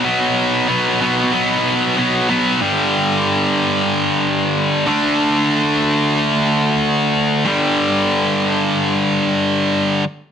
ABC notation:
X:1
M:4/4
L:1/8
Q:1/4=93
K:G
V:1 name="Distorted electric guitar" clef=bass
[B,,F,B,]2 [B,,F,B,] [B,,F,B,] [B,,F,B,]2 [B,,F,B,] [B,,F,B,] | [G,,D,G,]6- [G,,D,G,] [D,A,D]- | [D,A,D]6- [D,A,D] [G,,D,G,]- | [G,,D,G,]6- [G,,D,G,] z |]